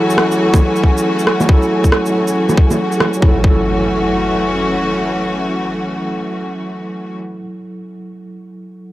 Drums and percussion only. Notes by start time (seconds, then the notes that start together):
0.10 shaker
0.18 cross-stick
0.32 shaker
0.54 kick, low bongo, shaker
0.76 shaker
0.84 kick
0.98 shaker
1.19 shaker
1.27 cross-stick
1.40 low bongo, shaker
1.49 kick
1.62 shaker
1.84 kick, shaker
1.92 cross-stick
2.06 shaker
2.28 shaker
2.49 low bongo, shaker
2.57 kick
2.71 low bongo, shaker
2.92 shaker
3.00 cross-stick, low bongo
3.14 shaker
3.22 kick
3.44 kick